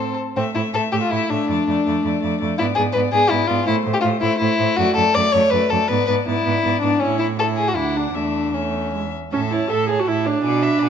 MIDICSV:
0, 0, Header, 1, 5, 480
1, 0, Start_track
1, 0, Key_signature, 0, "minor"
1, 0, Tempo, 376176
1, 461, Time_signature, 3, 2, 24, 8
1, 2844, Tempo, 362100
1, 5244, Tempo, 370599
1, 6207, Key_signature, 3, "major"
1, 9084, Tempo, 387097
1, 11964, Tempo, 368550
1, 14000, End_track
2, 0, Start_track
2, 0, Title_t, "Violin"
2, 0, Program_c, 0, 40
2, 0, Note_on_c, 0, 72, 46
2, 216, Note_off_c, 0, 72, 0
2, 482, Note_on_c, 0, 76, 38
2, 701, Note_off_c, 0, 76, 0
2, 708, Note_on_c, 0, 76, 35
2, 941, Note_off_c, 0, 76, 0
2, 963, Note_on_c, 0, 76, 36
2, 1188, Note_off_c, 0, 76, 0
2, 1200, Note_on_c, 0, 76, 35
2, 1426, Note_off_c, 0, 76, 0
2, 1447, Note_on_c, 0, 76, 36
2, 1668, Note_off_c, 0, 76, 0
2, 1677, Note_on_c, 0, 76, 37
2, 1900, Note_off_c, 0, 76, 0
2, 1915, Note_on_c, 0, 74, 37
2, 2137, Note_off_c, 0, 74, 0
2, 2165, Note_on_c, 0, 74, 36
2, 2372, Note_off_c, 0, 74, 0
2, 2380, Note_on_c, 0, 74, 37
2, 2608, Note_off_c, 0, 74, 0
2, 2618, Note_on_c, 0, 74, 38
2, 2833, Note_off_c, 0, 74, 0
2, 2841, Note_on_c, 0, 74, 41
2, 3071, Note_off_c, 0, 74, 0
2, 3079, Note_on_c, 0, 74, 39
2, 3312, Note_off_c, 0, 74, 0
2, 3320, Note_on_c, 0, 74, 46
2, 3551, Note_off_c, 0, 74, 0
2, 3559, Note_on_c, 0, 74, 40
2, 3794, Note_off_c, 0, 74, 0
2, 3802, Note_on_c, 0, 74, 41
2, 4036, Note_off_c, 0, 74, 0
2, 4051, Note_on_c, 0, 74, 40
2, 4266, Note_off_c, 0, 74, 0
2, 4274, Note_on_c, 0, 74, 43
2, 4475, Note_off_c, 0, 74, 0
2, 4483, Note_on_c, 0, 74, 43
2, 4723, Note_off_c, 0, 74, 0
2, 4731, Note_on_c, 0, 72, 49
2, 4981, Note_off_c, 0, 72, 0
2, 4991, Note_on_c, 0, 72, 45
2, 5205, Note_off_c, 0, 72, 0
2, 5213, Note_on_c, 0, 72, 45
2, 5462, Note_off_c, 0, 72, 0
2, 5471, Note_on_c, 0, 72, 44
2, 5708, Note_off_c, 0, 72, 0
2, 5715, Note_on_c, 0, 72, 49
2, 5946, Note_off_c, 0, 72, 0
2, 5954, Note_on_c, 0, 72, 42
2, 6198, Note_off_c, 0, 72, 0
2, 6211, Note_on_c, 0, 74, 49
2, 6433, Note_off_c, 0, 74, 0
2, 6441, Note_on_c, 0, 74, 45
2, 6680, Note_off_c, 0, 74, 0
2, 6686, Note_on_c, 0, 74, 42
2, 6915, Note_off_c, 0, 74, 0
2, 6923, Note_on_c, 0, 74, 40
2, 7158, Note_off_c, 0, 74, 0
2, 7180, Note_on_c, 0, 74, 42
2, 7404, Note_off_c, 0, 74, 0
2, 7412, Note_on_c, 0, 74, 41
2, 7643, Note_off_c, 0, 74, 0
2, 7655, Note_on_c, 0, 74, 45
2, 7883, Note_off_c, 0, 74, 0
2, 7914, Note_on_c, 0, 74, 40
2, 8134, Note_off_c, 0, 74, 0
2, 8144, Note_on_c, 0, 74, 39
2, 8369, Note_off_c, 0, 74, 0
2, 8402, Note_on_c, 0, 74, 38
2, 8617, Note_off_c, 0, 74, 0
2, 8622, Note_on_c, 0, 74, 38
2, 8846, Note_off_c, 0, 74, 0
2, 8863, Note_on_c, 0, 74, 38
2, 9085, Note_off_c, 0, 74, 0
2, 9093, Note_on_c, 0, 73, 39
2, 9523, Note_off_c, 0, 73, 0
2, 9569, Note_on_c, 0, 73, 35
2, 10014, Note_off_c, 0, 73, 0
2, 10021, Note_on_c, 0, 78, 31
2, 10503, Note_on_c, 0, 76, 29
2, 10521, Note_off_c, 0, 78, 0
2, 10972, Note_off_c, 0, 76, 0
2, 10979, Note_on_c, 0, 76, 27
2, 11463, Note_off_c, 0, 76, 0
2, 11481, Note_on_c, 0, 76, 26
2, 11720, Note_off_c, 0, 76, 0
2, 11967, Note_on_c, 0, 76, 32
2, 12211, Note_on_c, 0, 81, 33
2, 12231, Note_off_c, 0, 76, 0
2, 12447, Note_on_c, 0, 76, 32
2, 12467, Note_off_c, 0, 81, 0
2, 12694, Note_on_c, 0, 81, 33
2, 12713, Note_off_c, 0, 76, 0
2, 12929, Note_off_c, 0, 81, 0
2, 12949, Note_on_c, 0, 76, 36
2, 13162, Note_on_c, 0, 81, 36
2, 13182, Note_off_c, 0, 76, 0
2, 13395, Note_off_c, 0, 81, 0
2, 13403, Note_on_c, 0, 80, 38
2, 13660, Note_on_c, 0, 83, 40
2, 13679, Note_off_c, 0, 80, 0
2, 13916, Note_on_c, 0, 80, 36
2, 13936, Note_off_c, 0, 83, 0
2, 14000, Note_off_c, 0, 80, 0
2, 14000, End_track
3, 0, Start_track
3, 0, Title_t, "Violin"
3, 0, Program_c, 1, 40
3, 0, Note_on_c, 1, 69, 39
3, 203, Note_off_c, 1, 69, 0
3, 470, Note_on_c, 1, 60, 53
3, 565, Note_off_c, 1, 60, 0
3, 699, Note_on_c, 1, 64, 48
3, 796, Note_off_c, 1, 64, 0
3, 946, Note_on_c, 1, 69, 54
3, 1042, Note_off_c, 1, 69, 0
3, 1175, Note_on_c, 1, 67, 55
3, 1224, Note_off_c, 1, 67, 0
3, 1297, Note_on_c, 1, 65, 47
3, 1421, Note_on_c, 1, 64, 57
3, 1440, Note_off_c, 1, 65, 0
3, 1661, Note_on_c, 1, 62, 50
3, 1680, Note_off_c, 1, 64, 0
3, 3085, Note_off_c, 1, 62, 0
3, 3315, Note_on_c, 1, 64, 65
3, 3413, Note_off_c, 1, 64, 0
3, 3540, Note_on_c, 1, 68, 59
3, 3641, Note_off_c, 1, 68, 0
3, 3768, Note_on_c, 1, 71, 64
3, 3870, Note_off_c, 1, 71, 0
3, 4028, Note_on_c, 1, 68, 65
3, 4263, Note_on_c, 1, 64, 63
3, 4283, Note_off_c, 1, 68, 0
3, 4496, Note_on_c, 1, 65, 61
3, 4516, Note_off_c, 1, 64, 0
3, 4747, Note_off_c, 1, 65, 0
3, 4753, Note_on_c, 1, 64, 68
3, 4859, Note_off_c, 1, 64, 0
3, 5106, Note_on_c, 1, 67, 62
3, 5158, Note_off_c, 1, 67, 0
3, 5202, Note_on_c, 1, 65, 52
3, 5307, Note_off_c, 1, 65, 0
3, 5466, Note_on_c, 1, 64, 65
3, 5685, Note_off_c, 1, 64, 0
3, 5693, Note_on_c, 1, 64, 68
3, 6187, Note_on_c, 1, 66, 71
3, 6207, Note_off_c, 1, 64, 0
3, 6428, Note_off_c, 1, 66, 0
3, 6436, Note_on_c, 1, 69, 67
3, 6676, Note_on_c, 1, 74, 74
3, 6696, Note_off_c, 1, 69, 0
3, 6909, Note_on_c, 1, 73, 69
3, 6929, Note_off_c, 1, 74, 0
3, 7141, Note_on_c, 1, 71, 68
3, 7160, Note_off_c, 1, 73, 0
3, 7392, Note_on_c, 1, 69, 62
3, 7411, Note_off_c, 1, 71, 0
3, 7629, Note_on_c, 1, 71, 69
3, 7649, Note_off_c, 1, 69, 0
3, 7862, Note_off_c, 1, 71, 0
3, 7869, Note_on_c, 1, 71, 64
3, 7968, Note_off_c, 1, 71, 0
3, 8129, Note_on_c, 1, 64, 56
3, 8829, Note_off_c, 1, 64, 0
3, 8838, Note_on_c, 1, 62, 54
3, 9075, Note_on_c, 1, 61, 53
3, 9094, Note_off_c, 1, 62, 0
3, 9306, Note_off_c, 1, 61, 0
3, 9313, Note_on_c, 1, 64, 50
3, 9407, Note_off_c, 1, 64, 0
3, 9567, Note_on_c, 1, 69, 50
3, 9657, Note_off_c, 1, 69, 0
3, 9789, Note_on_c, 1, 68, 47
3, 9921, Note_on_c, 1, 66, 39
3, 9939, Note_off_c, 1, 68, 0
3, 10013, Note_on_c, 1, 64, 42
3, 10032, Note_off_c, 1, 66, 0
3, 10276, Note_on_c, 1, 62, 38
3, 10295, Note_off_c, 1, 64, 0
3, 10487, Note_off_c, 1, 62, 0
3, 10495, Note_on_c, 1, 62, 39
3, 10994, Note_on_c, 1, 61, 31
3, 11012, Note_off_c, 1, 62, 0
3, 11725, Note_off_c, 1, 61, 0
3, 11959, Note_on_c, 1, 69, 33
3, 12234, Note_on_c, 1, 73, 31
3, 12254, Note_off_c, 1, 69, 0
3, 12458, Note_on_c, 1, 69, 34
3, 12477, Note_off_c, 1, 73, 0
3, 12711, Note_on_c, 1, 73, 33
3, 12731, Note_off_c, 1, 69, 0
3, 12895, Note_off_c, 1, 73, 0
3, 12902, Note_on_c, 1, 69, 35
3, 13170, Note_on_c, 1, 73, 34
3, 13190, Note_off_c, 1, 69, 0
3, 13408, Note_off_c, 1, 73, 0
3, 13417, Note_on_c, 1, 74, 38
3, 13652, Note_on_c, 1, 76, 38
3, 13672, Note_off_c, 1, 74, 0
3, 13872, Note_on_c, 1, 74, 41
3, 13891, Note_off_c, 1, 76, 0
3, 14000, Note_off_c, 1, 74, 0
3, 14000, End_track
4, 0, Start_track
4, 0, Title_t, "Viola"
4, 0, Program_c, 2, 41
4, 0, Note_on_c, 2, 60, 39
4, 197, Note_off_c, 2, 60, 0
4, 464, Note_on_c, 2, 57, 37
4, 700, Note_off_c, 2, 57, 0
4, 711, Note_on_c, 2, 57, 35
4, 942, Note_off_c, 2, 57, 0
4, 958, Note_on_c, 2, 57, 36
4, 1185, Note_off_c, 2, 57, 0
4, 1195, Note_on_c, 2, 57, 34
4, 1408, Note_off_c, 2, 57, 0
4, 1416, Note_on_c, 2, 57, 38
4, 1652, Note_off_c, 2, 57, 0
4, 1659, Note_on_c, 2, 57, 36
4, 1877, Note_off_c, 2, 57, 0
4, 1884, Note_on_c, 2, 57, 37
4, 2122, Note_off_c, 2, 57, 0
4, 2128, Note_on_c, 2, 57, 36
4, 2363, Note_off_c, 2, 57, 0
4, 2373, Note_on_c, 2, 57, 39
4, 2594, Note_off_c, 2, 57, 0
4, 2601, Note_on_c, 2, 57, 38
4, 2823, Note_off_c, 2, 57, 0
4, 2830, Note_on_c, 2, 57, 37
4, 3073, Note_off_c, 2, 57, 0
4, 3087, Note_on_c, 2, 57, 39
4, 3321, Note_off_c, 2, 57, 0
4, 3338, Note_on_c, 2, 59, 42
4, 3567, Note_off_c, 2, 59, 0
4, 3574, Note_on_c, 2, 59, 40
4, 3804, Note_off_c, 2, 59, 0
4, 3823, Note_on_c, 2, 59, 42
4, 4047, Note_off_c, 2, 59, 0
4, 4053, Note_on_c, 2, 59, 41
4, 4278, Note_off_c, 2, 59, 0
4, 4286, Note_on_c, 2, 59, 43
4, 4511, Note_off_c, 2, 59, 0
4, 4519, Note_on_c, 2, 59, 42
4, 4749, Note_off_c, 2, 59, 0
4, 4757, Note_on_c, 2, 57, 48
4, 4990, Note_off_c, 2, 57, 0
4, 4998, Note_on_c, 2, 57, 44
4, 5227, Note_off_c, 2, 57, 0
4, 5235, Note_on_c, 2, 57, 44
4, 5469, Note_off_c, 2, 57, 0
4, 5477, Note_on_c, 2, 57, 42
4, 5714, Note_off_c, 2, 57, 0
4, 5728, Note_on_c, 2, 57, 44
4, 5963, Note_off_c, 2, 57, 0
4, 5969, Note_on_c, 2, 57, 43
4, 6205, Note_off_c, 2, 57, 0
4, 6216, Note_on_c, 2, 57, 48
4, 6428, Note_off_c, 2, 57, 0
4, 6436, Note_on_c, 2, 57, 42
4, 6677, Note_off_c, 2, 57, 0
4, 6689, Note_on_c, 2, 57, 45
4, 6921, Note_off_c, 2, 57, 0
4, 6945, Note_on_c, 2, 57, 44
4, 7165, Note_off_c, 2, 57, 0
4, 7173, Note_on_c, 2, 57, 43
4, 7404, Note_off_c, 2, 57, 0
4, 7432, Note_on_c, 2, 57, 42
4, 7654, Note_off_c, 2, 57, 0
4, 7660, Note_on_c, 2, 59, 43
4, 7886, Note_off_c, 2, 59, 0
4, 7894, Note_on_c, 2, 59, 39
4, 8124, Note_off_c, 2, 59, 0
4, 8142, Note_on_c, 2, 59, 40
4, 8354, Note_off_c, 2, 59, 0
4, 8361, Note_on_c, 2, 59, 37
4, 8596, Note_off_c, 2, 59, 0
4, 8621, Note_on_c, 2, 59, 36
4, 8846, Note_off_c, 2, 59, 0
4, 8854, Note_on_c, 2, 59, 37
4, 9084, Note_off_c, 2, 59, 0
4, 9105, Note_on_c, 2, 64, 36
4, 9530, Note_off_c, 2, 64, 0
4, 9558, Note_on_c, 2, 64, 36
4, 10014, Note_off_c, 2, 64, 0
4, 10024, Note_on_c, 2, 62, 29
4, 10504, Note_on_c, 2, 57, 27
4, 10523, Note_off_c, 2, 62, 0
4, 10985, Note_off_c, 2, 57, 0
4, 10993, Note_on_c, 2, 57, 26
4, 11470, Note_off_c, 2, 57, 0
4, 11483, Note_on_c, 2, 56, 24
4, 11580, Note_off_c, 2, 56, 0
4, 11966, Note_on_c, 2, 61, 51
4, 12063, Note_off_c, 2, 61, 0
4, 12197, Note_on_c, 2, 64, 51
4, 12439, Note_off_c, 2, 64, 0
4, 12453, Note_on_c, 2, 69, 54
4, 12686, Note_off_c, 2, 69, 0
4, 12696, Note_on_c, 2, 68, 53
4, 12836, Note_on_c, 2, 66, 52
4, 12856, Note_off_c, 2, 68, 0
4, 12941, Note_on_c, 2, 64, 56
4, 12961, Note_off_c, 2, 66, 0
4, 13189, Note_on_c, 2, 62, 60
4, 13209, Note_off_c, 2, 64, 0
4, 14000, Note_off_c, 2, 62, 0
4, 14000, End_track
5, 0, Start_track
5, 0, Title_t, "Cello"
5, 0, Program_c, 3, 42
5, 0, Note_on_c, 3, 45, 44
5, 213, Note_off_c, 3, 45, 0
5, 462, Note_on_c, 3, 45, 42
5, 559, Note_off_c, 3, 45, 0
5, 706, Note_on_c, 3, 45, 36
5, 801, Note_off_c, 3, 45, 0
5, 936, Note_on_c, 3, 45, 37
5, 1033, Note_off_c, 3, 45, 0
5, 1187, Note_on_c, 3, 45, 36
5, 1282, Note_off_c, 3, 45, 0
5, 1426, Note_on_c, 3, 45, 38
5, 1520, Note_off_c, 3, 45, 0
5, 1668, Note_on_c, 3, 45, 41
5, 1761, Note_off_c, 3, 45, 0
5, 1909, Note_on_c, 3, 41, 43
5, 2001, Note_off_c, 3, 41, 0
5, 2145, Note_on_c, 3, 41, 39
5, 2237, Note_off_c, 3, 41, 0
5, 2387, Note_on_c, 3, 41, 45
5, 2478, Note_off_c, 3, 41, 0
5, 2614, Note_on_c, 3, 41, 38
5, 2707, Note_off_c, 3, 41, 0
5, 2854, Note_on_c, 3, 41, 44
5, 2948, Note_off_c, 3, 41, 0
5, 3094, Note_on_c, 3, 41, 44
5, 3188, Note_off_c, 3, 41, 0
5, 3338, Note_on_c, 3, 44, 47
5, 3431, Note_off_c, 3, 44, 0
5, 3568, Note_on_c, 3, 44, 44
5, 3664, Note_off_c, 3, 44, 0
5, 3801, Note_on_c, 3, 44, 47
5, 3897, Note_off_c, 3, 44, 0
5, 4037, Note_on_c, 3, 44, 41
5, 4133, Note_off_c, 3, 44, 0
5, 4280, Note_on_c, 3, 44, 47
5, 4376, Note_off_c, 3, 44, 0
5, 4521, Note_on_c, 3, 44, 45
5, 4617, Note_off_c, 3, 44, 0
5, 4767, Note_on_c, 3, 45, 52
5, 4862, Note_off_c, 3, 45, 0
5, 5008, Note_on_c, 3, 45, 45
5, 5104, Note_off_c, 3, 45, 0
5, 5248, Note_on_c, 3, 45, 52
5, 5342, Note_off_c, 3, 45, 0
5, 5478, Note_on_c, 3, 45, 47
5, 5575, Note_off_c, 3, 45, 0
5, 5727, Note_on_c, 3, 45, 49
5, 5823, Note_off_c, 3, 45, 0
5, 5967, Note_on_c, 3, 45, 51
5, 6064, Note_off_c, 3, 45, 0
5, 6213, Note_on_c, 3, 42, 52
5, 6308, Note_off_c, 3, 42, 0
5, 6450, Note_on_c, 3, 42, 47
5, 6545, Note_off_c, 3, 42, 0
5, 6697, Note_on_c, 3, 42, 50
5, 6790, Note_off_c, 3, 42, 0
5, 6933, Note_on_c, 3, 42, 46
5, 7027, Note_off_c, 3, 42, 0
5, 7169, Note_on_c, 3, 42, 50
5, 7264, Note_off_c, 3, 42, 0
5, 7419, Note_on_c, 3, 42, 47
5, 7512, Note_off_c, 3, 42, 0
5, 7668, Note_on_c, 3, 44, 51
5, 7759, Note_off_c, 3, 44, 0
5, 7901, Note_on_c, 3, 44, 41
5, 7994, Note_off_c, 3, 44, 0
5, 8136, Note_on_c, 3, 44, 45
5, 8229, Note_off_c, 3, 44, 0
5, 8393, Note_on_c, 3, 44, 42
5, 8482, Note_off_c, 3, 44, 0
5, 8629, Note_on_c, 3, 44, 41
5, 8719, Note_off_c, 3, 44, 0
5, 8859, Note_on_c, 3, 44, 41
5, 8952, Note_off_c, 3, 44, 0
5, 9098, Note_on_c, 3, 45, 41
5, 10031, Note_on_c, 3, 38, 35
5, 10049, Note_off_c, 3, 45, 0
5, 10505, Note_off_c, 3, 38, 0
5, 10511, Note_on_c, 3, 40, 30
5, 11704, Note_off_c, 3, 40, 0
5, 11964, Note_on_c, 3, 45, 42
5, 12392, Note_off_c, 3, 45, 0
5, 12451, Note_on_c, 3, 45, 42
5, 12872, Note_off_c, 3, 45, 0
5, 12924, Note_on_c, 3, 45, 43
5, 13347, Note_off_c, 3, 45, 0
5, 13409, Note_on_c, 3, 47, 48
5, 13829, Note_off_c, 3, 47, 0
5, 13889, Note_on_c, 3, 47, 49
5, 14000, Note_off_c, 3, 47, 0
5, 14000, End_track
0, 0, End_of_file